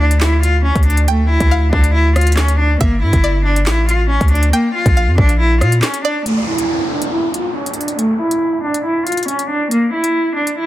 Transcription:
Already playing: D2 D5
0.00 D4
0.11 closed hi-hat
0.21 E4, snare, clap
0.43 F4, closed hi-hat
0.65 C#4
0.76 D2, kick, closed hi-hat
0.83 D4, closed hi-hat
0.90 closed hi-hat
0.97 closed hi-hat
1.08 A3 G5, closed hi-hat
1.30 E4
1.40 D2, kick, closed hi-hat
1.51 F5
1.73 D2 D4, kick
1.84 closed hi-hat
1.94 E4
2.16 F4, cross-stick, closed hi-hat
2.21 closed hi-hat
2.27 closed hi-hat
2.32 closed hi-hat
2.37 C#4, snare, clap, closed hi-hat
2.48 closed hi-hat
2.59 D4
2.81 G1 A#3 E5, kick, closed hi-hat
3.02 G2 E4
3.13 G1, kick, closed hi-hat
3.24 D5
3.45 D4
3.56 closed hi-hat
3.66 A1 E4, snare, clap
3.89 F4, closed hi-hat
4.10 C#4
4.21 D2, kick, closed hi-hat
4.28 D4, closed hi-hat
4.35 closed hi-hat
4.43 closed hi-hat
4.53 A#3 G5, closed hi-hat
4.75 F4
4.86 A#1, kick, closed hi-hat
4.97 F5
5.07 F2
5.18 A#1 D4, kick, cross-stick
5.29 closed hi-hat
5.40 E4
5.61 A#2 F4, cross-stick, closed hi-hat
5.72 closed hi-hat
5.82 C#4, snare, clap, closed hi-hat
5.94 closed hi-hat
6.05 D4 D5
6.26 A3, closed hi-hat, downlifter
6.48 E4
6.58 closed hi-hat
6.91 D4
7.02 closed hi-hat
7.12 E4
7.34 F4, closed hi-hat
7.56 C#4
7.66 closed hi-hat
7.74 D4, closed hi-hat
7.81 closed hi-hat
7.88 closed hi-hat
7.99 A3, closed hi-hat
8.20 E4
8.31 closed hi-hat
8.63 D4
8.74 closed hi-hat
8.85 E4
9.07 F4, closed hi-hat
9.12 closed hi-hat
9.17 closed hi-hat
9.23 closed hi-hat
9.28 C#4, closed hi-hat
9.39 closed hi-hat
9.50 D4
9.71 A#3, closed hi-hat
9.93 E4
10.04 closed hi-hat
10.36 D4
10.47 closed hi-hat
10.58 E4

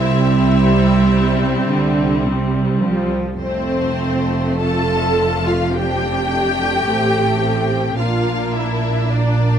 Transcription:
Already playing: C2
0.00 C3 G3 C4 E4 E5
1.69 D3
2.25 C3
2.81 F3
3.38 F1 F2 A3 C4 C5
4.61 F4 A4 A5
5.46 F4 F5
5.73 C4 D4 G4 G5
6.31 A3
6.87 A1 A2 C4
7.43 C4
7.97 A#1 A#2 A#3 D4 F4 F5
8.54 E4 E5
9.10 A#3 D4 D5

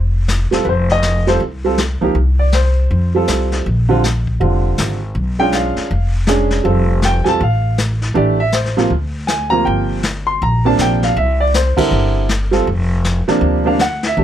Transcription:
Already playing: F1
0.28 snare, hi-hat pedal
0.51 E1 G3 C4 F4 A4, snare
0.65 F1 B4, brush sweep
0.69 C5
0.89 D#5, snare
1.02 snare, hi-hat pedal
1.27 G3 C4 F4 A4 C5, snare
1.40 C2, brush sweep
1.65 G3 C4 F4 A4
1.78 snare, hi-hat pedal
2.01 C#2 F3 A#3 D#4 G4
2.15 C2, brush sweep
2.39 D5
2.52 C5, snare, hi-hat pedal
2.90 F2, brush sweep
3.15 G3 C4 F4 A4
3.27 C2, snare, hi-hat pedal
3.52 snare
3.66 A#1, brush sweep
3.89 D3 G3 C4 F4
4.04 snare, hi-hat pedal
4.27 kick
4.40 F1 D3 G3 C4 F4, brush sweep
4.78 G#1, snare, hi-hat pedal
5.15 B1, brush sweep
5.39 G#3 C#4 D4 F4 G5
5.52 F5, snare, hi-hat pedal
5.76 muted upright bass stroke, snare
5.89 F1, brush sweep
6.27 G#3 C#4 D4 G#4, snare, hi-hat pedal
6.50 snare
6.64 F1 G3 C4 F4 A4, brush sweep
7.02 G5, snare, hi-hat pedal
7.24 E1 G3 C4 F4 A4 G#5, snare
7.29 A5
7.39 A1 F5, brush sweep
7.78 snare, hi-hat pedal
8.02 snare
8.14 A1 E3 A3 D4 G4 D5, brush sweep
8.40 E5
8.52 C5, snare, hi-hat pedal
8.65 snare
8.77 C3 F3 A#3 F4, snare
8.90 D2, brush sweep
9.27 G#5, snare, hi-hat pedal
9.50 C3 F3 A#3 F4 A#5
9.65 G1 G5, brush sweep
10.03 snare, hi-hat pedal
10.27 C6
10.41 A#1 A#5, brush sweep
10.65 C3 F3 A#3 D4 A5
10.78 A#1 G5, snare, hi-hat pedal
11.02 F5, snare
11.16 C2 E5, brush sweep
11.40 D5
11.54 C5, snare, hi-hat pedal
11.77 D3 G3 C4 E4 A#4, muted upright bass stroke, kick, ride
11.91 G1, brush sweep
12.29 snare, hi-hat pedal
12.51 G3 C4 F4 A4, snare
12.67 F1, brush sweep
13.04 snare, hi-hat pedal
13.28 C3 F3 A#3 D4, muted upright bass stroke, snare
13.41 D2, brush sweep
13.65 C3 F3 A#3 D4 F5
13.79 F#5, snare, hi-hat pedal
14.03 E5, snare
14.17 C2 E3 A3 D4 G4, brush sweep

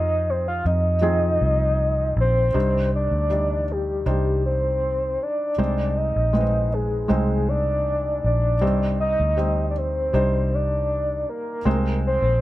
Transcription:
Already playing: F2 C3 F3 C4 D#4 G#4 D#5
0.30 C5
0.48 F5
0.65 F2 D#5
1.02 F3 C4 D#4 G#4
1.41 C2
2.16 A#1 C5
2.54 C2 G2 G3 D4 D#4 C5
2.95 D5
3.11 D2
3.30 G3 D4 D#4 D5
3.72 G4
4.06 C2 G3 D4 D#4 G4 C5
4.46 C5
5.22 D5
5.58 C2 C3 G#3 C4 D#4 C5
5.97 D#5
6.16 A#1
6.33 G#3 C4 D#4 B4
6.41 C5
6.74 G#4
7.08 C2 G#3 C4 D#4 G#4 C5
7.48 D5
8.24 A#1 D5
8.61 C2 G2 G3 C4 D#4 C5
9.00 D#5
9.20 D2
9.37 G3 C4 D#4 C5
9.70 D5
9.77 C5
10.13 C2 G3 D4 D#4 C5
10.54 D5
11.30 A#4
11.65 C2 C3 G#3 C4 D#4 C5
12.07 C5
12.22 A#1

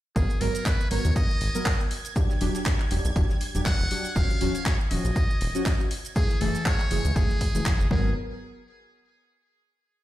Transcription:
0.16 G#1 F#3 B3 G#4 A#4 G#6, kick, closed hi-hat, tambourine, shaker
0.30 closed hi-hat, shaker
0.41 G#1 F#3 B3 A#4, open hi-hat, tambourine
0.55 closed hi-hat, shaker
0.66 B4, kick, snare, clap, closed hi-hat, tambourine, shaker
0.81 shaker
0.91 G#1 F#3 B3 A#4 C#5, open hi-hat, tambourine
1.05 D#2, closed hi-hat, shaker
1.16 D#5, kick, closed hi-hat, tambourine, shaker
1.31 shaker
1.41 G#1, open hi-hat, tambourine
1.55 F#3 B3 A#4, closed hi-hat, shaker
1.66 kick, snare, clap, closed hi-hat, open hi-hat, shaker
1.81 shaker
1.91 open hi-hat, tambourine
2.05 closed hi-hat, shaker
2.16 F#3 D4 G4, kick, closed hi-hat, tambourine, shaker
2.30 snare, shaker
2.41 E1 F#3 D4 G4, open hi-hat, tambourine
2.55 snare, closed hi-hat, shaker
2.66 kick, snare, clap, closed hi-hat, tambourine, shaker
2.80 clap, shaker
2.91 E1 F#3 D4 G4, open hi-hat, tambourine
3.05 B1, closed hi-hat, shaker
3.16 E1 F#3 D4 G4, kick, closed hi-hat, tambourine, shaker
3.30 snare, shaker
3.41 open hi-hat, tambourine
3.55 E1 F#3 D4 G4, closed hi-hat, shaker
3.66 F#5, kick, snare, clap, closed hi-hat, tambourine, shaker
3.80 E1, shaker
3.91 F#3 D4 G4, open hi-hat, tambourine
4.05 closed hi-hat, shaker
4.16 D#1 F3 C#4 F#4 F5, kick, closed hi-hat, tambourine, shaker
4.30 closed hi-hat, shaker
4.41 D#1 F3 C#4 F#4, open hi-hat, tambourine
4.55 closed hi-hat, shaker
4.66 C#5, kick, snare, clap, closed hi-hat, tambourine, shaker
4.81 shaker
4.91 D#1 F3 C#4 F#4 D#5, open hi-hat, tambourine
5.05 A#1, closed hi-hat, shaker
5.16 kick, closed hi-hat, tambourine, shaker
5.31 shaker
5.41 D#1, open hi-hat, tambourine
5.55 F3 C#4 F#4, closed hi-hat, shaker
5.66 kick, snare, clap, closed hi-hat, open hi-hat, shaker
5.81 shaker
5.91 open hi-hat, tambourine
6.05 closed hi-hat, shaker
6.16 E3 A3 G#4, kick, closed hi-hat, tambourine, shaker
6.30 snare, shaker
6.41 F#1 E3 A3 G#4 A4, open hi-hat, tambourine
6.55 snare, closed hi-hat, shaker
6.66 C#5, kick, snare, clap, closed hi-hat, tambourine, shaker
6.80 clap, shaker
6.91 F#1 E3 A3 G#4, open hi-hat, tambourine
7.05 C#2, closed hi-hat, shaker
7.16 F#1 E3 A3 G#4, kick, closed hi-hat, tambourine, shaker
7.30 snare, shaker
7.41 kick, open hi-hat, tambourine
7.55 F#1 E3 A3 G#4, closed hi-hat, shaker
7.66 kick, snare, clap, closed hi-hat, tambourine, shaker
7.80 F#1, shaker
7.90 G#1 F#3 B3 G#4 A#4, kick

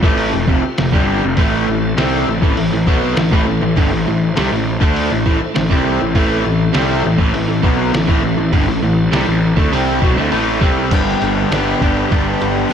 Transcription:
Already playing: C4 F4
0.03 A1 A2 E3 A3, kick
0.18 open hi-hat
0.33 F1 F2 C3
0.48 F1 F2 C3, kick
0.64 muted overdriven electric guitar stroke, muted picked electric bass stroke
0.78 F1 F2 C3, snare, open hi-hat
0.93 G1 G2 D3 G3, kick
1.23 F1 F2 C3
1.37 A1 A2 E3 A3 C4 A4 E5, kick, open hi-hat
1.67 A1 A2 E3
1.97 C2 C3 G3 C4, snare, open hi-hat
2.27 A1 A2 E3
2.42 A1 A2 E3, kick
2.57 A1 A2 E3, open hi-hat
2.72 A1 A2 E3
2.87 B1 B2 F#3 B3, kick
3.17 A1 A2 E3, snare, open hi-hat
3.32 A1 A2 E3, kick
3.46 A1 A2 E3
3.61 A1 A2 E3
3.76 G1 G2 D3 A4 C5 E5, kick, open hi-hat
3.90 A1 A2 E3
4.05 A1 A2 E3
4.36 C2 C3 G3, snare, open hi-hat
4.51 A1 A2 E3
4.80 D2 D3 A3 D4, kick
4.96 open hi-hat
5.11 A1 A2 E3
5.26 A1 A2 E3, kick
5.41 muted overdriven electric guitar stroke, muted picked electric bass stroke
5.55 A1 A2 E3, snare, open hi-hat
5.70 C2 C3 G3 C4, kick
6.01 A1 A2 E3
6.15 A1 A2 E3 A3 C4 A4 E5, kick, open hi-hat
6.45 A1 A2 E3
6.74 C2 C3 G3 C4, snare, open hi-hat
7.05 A1 A2 E3
7.18 A1 A2 E3, kick
7.34 A1 A2 E3, open hi-hat
7.49 A1 A2 E3
7.64 B1 B2 F#3 B3, kick
7.93 A1 A2 E3, snare, open hi-hat
8.08 A1 A2 E3, kick
8.22 A1 A2 E3
8.38 A1 A2 E3
8.53 G1 G2 D3 C4 E4 A4, kick, open hi-hat
8.67 A1 A2 E3
8.81 A1 A2 E3
9.12 C2 C3 G3, snare, open hi-hat
9.27 A1 A2 E3
9.57 D2 D3 A3, kick
9.73 C2 C3 G3 C4, open hi-hat
10.02 B1 B2 F#3, kick
10.16 D2 D3 A3
10.32 A1 A2 E3 A3, open hi-hat
10.61 C2 C3 G3 C4, kick
10.91 G1 G2 D3 G3 B3 D4 G4 B4, kick, closed hi-hat, crash
11.22 G1 D4 G4 B4, closed hi-hat
11.51 G1 G2 D3 G3 B3 D4 G4 B4, snare, closed hi-hat
11.80 G1 G2 D3 G3 B3 D4 G4, kick, closed hi-hat
12.10 G1 G2 D3 G3 B3 D4 G4, kick, closed hi-hat
12.40 G1 D4 G4 B4, closed hi-hat
12.68 G3 D4

